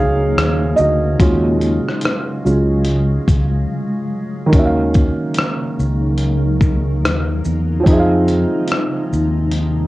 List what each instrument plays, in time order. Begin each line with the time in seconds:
Already playing: fretless electric bass C#2, ambient pad C#3 F#3 A#3 D#4, felt piano F#3 C#4 D#4 F4 F#4 G#4 C5 C#5 F5
0.37 fretless electric bass D#2, cross-stick, closed hi-hat
0.76 fretless electric bass D2, felt piano F#4 D#5, shaker
1.19 fretless electric bass D#2, felt piano F#3 G#3 C#4 F4, ambient pad G#3 F5, kick, closed hi-hat
1.61 closed hi-hat, shaker
1.88 cross-stick
2.01 closed hi-hat
2.05 cross-stick
2.44 fretless electric bass C#2, felt piano F#3 G#3 C#4 F4, shaker
2.85 closed hi-hat
3.28 fretless electric bass C#2, kick, closed hi-hat, shaker
4.46 felt piano D#3 A#3
4.52 fretless electric bass D#2, ambient pad C#3 F#3 A#3 D#4, felt piano C#4 F#4, kick, closed hi-hat
4.59 felt piano E5
4.66 felt piano F5
4.94 kick, closed hi-hat, shaker
5.34 closed hi-hat
5.38 cross-stick
5.79 fretless electric bass C#2, shaker
6.18 closed hi-hat
6.61 kick, shaker
7.04 fretless electric bass D#2, cross-stick, closed hi-hat
7.45 fretless electric bass E2, shaker
7.80 felt piano F3 C4
7.84 fretless electric bass F2, ambient pad C3 F3 G#3, felt piano D#4, kick, closed hi-hat
7.90 felt piano G#4 E5
8.00 felt piano F5
8.28 closed hi-hat, shaker
8.68 closed hi-hat
8.72 cross-stick
9.13 fretless electric bass D#2, shaker
9.52 closed hi-hat